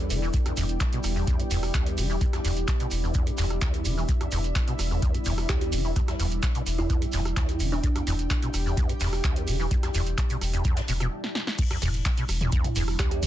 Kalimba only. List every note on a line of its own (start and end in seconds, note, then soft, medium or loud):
0.00 0.29 G4 medium
5.49 5.57 G4 medium
5.61 5.69 G4 medium
6.79 6.97 E4 medium
7.72 7.80 D4 medium
7.84 7.91 D4 medium
12.99 13.07 G4 medium
13.11 13.19 G4 medium